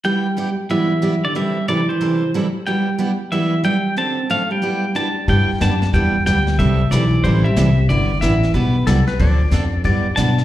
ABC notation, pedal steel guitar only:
X:1
M:4/4
L:1/8
Q:"Swing" 1/4=184
K:G
V:1 name="Pedal steel guitar"
g3 z e3 d | e2 d c3 z2 | g3 z e2 g2 | a2 =f g3 a2 |
g2 a2 g2 g2 | e2 d2 c e3 | d2 e2 B2 z2 | z6 a2 |]